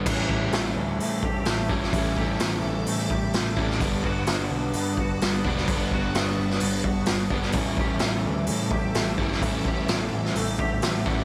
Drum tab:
CC |x---------------|----------------|----------------|----------------|
HH |----o---o---o---|o---o---o---o---|o---o---o---o---|o---o---o---o---|
SD |----o-------o--o|----o-------o--o|----o-------o--o|----o--o----o--o|
BD |o-o-------o---o-|o-o-------o---o-|o-o-------o---o-|o-o-------o---o-|

CC |----------------|----------------|
HH |o---o---o---o---|o---o---o---o---|
SD |----o-------o--o|----o--o----o---|
BD |o-o-------o---o-|o-o-------o---o-|